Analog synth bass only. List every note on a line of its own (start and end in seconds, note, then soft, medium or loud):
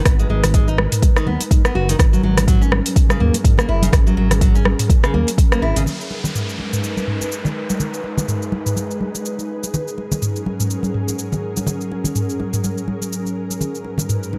0.06 0.25 G#1 loud
0.30 0.87 G#1 loud
1.27 1.37 D#2 medium
1.51 1.62 G#2 medium
1.75 1.95 F#1 loud
1.99 2.19 G#1 loud
2.23 2.81 G#1 loud
3.20 3.31 D#2 medium
3.44 3.55 G#2 medium
3.68 3.88 F#1 loud
3.93 4.12 G#1 loud
4.17 4.74 G#1 medium
5.14 5.25 D#2 medium
5.62 5.73 G#1 medium
5.76 5.84 G#1 medium